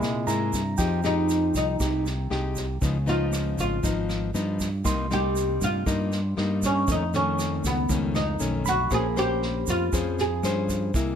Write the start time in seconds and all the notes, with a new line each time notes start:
Already playing: C3 G#3 E4
0.02 A#2, cross-stick, snare, shaker
0.27 G#2 G#3 A#3 E4 A#5, snare, shaker
0.53 G2, kick, snare, shaker
0.78 F2 F3 G#3 D#4 G4 G5, kick, cross-stick, snare, shaker
1.03 G#3 D#4 G4, snare, shaker
1.29 snare, shaker
1.54 C2 D#4, kick, snare, shaker
1.80 C2 C3 G#3 D#4 G4, kick, cross-stick, snare, shaker
2.06 snare, shaker
2.30 C2 G#3 D#4 G4, cross-stick, snare
2.56 kick, snare, shaker
2.81 C#2 C#3 F3 B3 D#4, kick, snare, shaker
3.06 F3 B3 D#4 F4, snare, shaker
3.33 cross-stick, snare, shaker
3.58 G#1 F4, kick, snare, shaker
3.83 G#1 F3 B3 D#4, kick, snare, shaker
4.09 cross-stick, snare, shaker
4.34 G2 F3 B3 D#4, snare, shaker
4.60 kick, snare, shaker
4.84 C2 C3 G3 A#3 D#4 C6, kick, cross-stick, snare, shaker
5.11 G3 A#3 D#4 G4, snare, shaker
5.36 snare, shaker
5.61 G2 F4, kick, snare, shaker
5.86 G2 G3 A#3 D#4, kick, cross-stick, snare, shaker
6.12 snare, shaker
6.37 G2 G3 A#3 D#4, cross-stick, snare
6.62 C#4, kick, snare, shaker
6.87 F2 D#3 A3 C#4, kick, snare, shaker
6.92 D#4
7.13 D#3 A3 C#4, snare, shaker
7.39 cross-stick, snare, shaker
7.64 C#2 B3, kick, snare, shaker
7.89 C#2 F2 D#3 A3 C#4, kick, snare, shaker
8.15 D#4, cross-stick, snare, shaker
8.40 B1 D#3 A3 C#4, snare, shaker
8.66 F#4 B5, kick, snare, shaker
8.91 A#1 A#3 C#4 G#4 C5, kick, cross-stick, snare, shaker
9.16 C#4 G4 C5, snare, shaker
9.42 snare
9.67 F2 F4, kick, snare, shaker
9.93 F2 F3 C#4 G#4 C5, kick, cross-stick, snare, shaker
10.18 G#4, snare, shaker
10.43 G2 C#4 G#4 C5, cross-stick, snare, shaker
10.69 kick, snare, shaker
10.94 C2 C3 G#3 A#3 E4, kick, snare, shaker